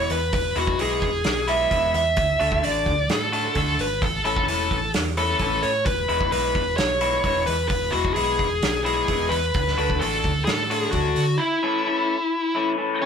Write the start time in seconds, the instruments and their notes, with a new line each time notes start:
Already playing: clean electric guitar E3 G#3 B3 E4, lead electric guitar C#5
0.10 fingered electric bass E2, lead electric guitar B4, open hi-hat
0.33 fingered electric bass E1, lead electric guitar B4, kick, open hi-hat
0.56 fingered electric bass E1, clean electric guitar E3 G#3 B3 E4, lead electric guitar F#4, open hi-hat
0.67 kick
0.79 fingered electric bass B1, clean electric guitar E3 G#3 B3 E4, lead electric guitar G#4, open hi-hat
1.02 fingered electric bass E1, kick, open hi-hat
1.24 fingered electric bass B1, snare, open hi-hat
1.48 clean electric guitar E3 G#3 B3 E4, lead electric guitar E5, open hi-hat
1.71 fingered electric bass E1, clean electric guitar E3 G#3 B3 E4, kick, open hi-hat
1.94 fingered electric bass E2, lead electric guitar E5, open hi-hat
2.17 fingered electric bass D2, kick, open hi-hat
2.40 fingered electric bass D2, clean electric guitar D3 A3 D4 F#4, open hi-hat
2.52 kick
2.63 fingered electric bass A1, clean electric guitar D3 A3 D4 F#4, lead electric guitar D5, open hi-hat
2.86 fingered electric bass D2, kick, open hi-hat
3.09 fingered electric bass A2, lead electric guitar A4, snare, open hi-hat
3.32 clean electric guitar D3 A3 D4 F#4, open hi-hat
3.55 fingered electric bass D2, clean electric guitar D3 A3 D4 F#4, lead electric guitar A4, kick, open hi-hat
3.78 fingered electric bass G#1, lead electric guitar B4, open hi-hat
4.02 fingered electric bass A1, lead electric guitar A4, kick, open hi-hat
4.24 fingered electric bass A1, clean electric guitar E3 A3 C#4 E4, lead electric guitar A4, open hi-hat
4.37 kick
4.48 fingered electric bass E1, clean electric guitar E3 A3 C#4 E4, open hi-hat
4.71 fingered electric bass A1, kick, open hi-hat
4.94 fingered electric bass E2, snare, open hi-hat
5.17 clean electric guitar E3 A3 C#4 E4, lead electric guitar A4, open hi-hat
5.39 fingered electric bass A1, clean electric guitar E3 A3 C#4 E4, kick, open hi-hat
5.63 fingered electric bass A2, lead electric guitar C#5, open hi-hat
5.86 fingered electric bass E1, lead electric guitar B4, kick, open hi-hat
6.09 fingered electric bass E1, clean electric guitar E3 G#3 B3 E4, open hi-hat
6.21 kick
6.31 fingered electric bass B1, clean electric guitar E3 G#3 B3 E4, lead electric guitar B4, open hi-hat
6.55 fingered electric bass E1, kick, open hi-hat
6.77 fingered electric bass B1, lead electric guitar C#5, snare, open hi-hat
7.01 clean electric guitar E3 G#3 B3 E4, open hi-hat
7.24 fingered electric bass E1, clean electric guitar E3 G#3 B3 E4, kick, open hi-hat
7.46 fingered electric bass E2, lead electric guitar B4, open hi-hat
7.68 fingered electric bass E1, lead electric guitar B4, kick, open hi-hat
7.91 fingered electric bass E1, clean electric guitar E3 G#3 B3 E4, lead electric guitar F#4, open hi-hat
8.05 kick
8.14 fingered electric bass B1, clean electric guitar E3 G#3 B3 E4, lead electric guitar G#4, open hi-hat
8.39 fingered electric bass E1, kick, open hi-hat
8.62 fingered electric bass B1, snare, open hi-hat
8.84 clean electric guitar E3 G#3 B3 E4, lead electric guitar G#4, open hi-hat
9.08 fingered electric bass E1, clean electric guitar E3 G#3 B3 E4, kick, open hi-hat
9.29 fingered electric bass E2, lead electric guitar B4, open hi-hat
9.54 fingered electric bass D2, kick, open hi-hat
9.67 snare
9.78 fingered electric bass D2, clean electric guitar D3 A3 D4 F#4, open hi-hat
9.90 kick
9.99 fingered electric bass A1, clean electric guitar D3 A3 D4 F#4, lead electric guitar A4, open hi-hat
10.24 fingered electric bass D2, kick, open hi-hat
10.45 fingered electric bass A2, lead electric guitar A4, snare, open hi-hat
10.70 clean electric guitar D3 A3 D4 F#4, open hi-hat
10.78 lead electric guitar G#4
10.91 fingered electric bass D2, clean electric guitar D3 A3 D4, lead electric guitar F#4, kick, open hi-hat
10.95 clean electric guitar F#4
11.16 fingered electric bass D3, open hi-hat
11.38 lead electric guitar E4
11.63 clean electric guitar E3 A3 C#4 E4
11.86 clean electric guitar E3 A3 C#4 E4
12.55 clean electric guitar E3 A3 C#4 E4
12.77 clean electric guitar E3 A3 C#4 E4
13.02 lead electric guitar C#4 C#5